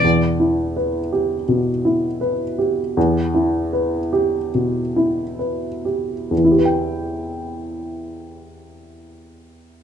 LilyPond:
\new Staff \with { instrumentName = "Upright piano" } { \time 4/4 \key e \minor \tempo 4 = 72 e,8 e'8 b'8 g'8 b,8 e'8 b'8 g'8 | e,8 e'8 b'8 g'8 b,8 e'8 b'8 g'8 | <e, e e' g' b' g''>1 | }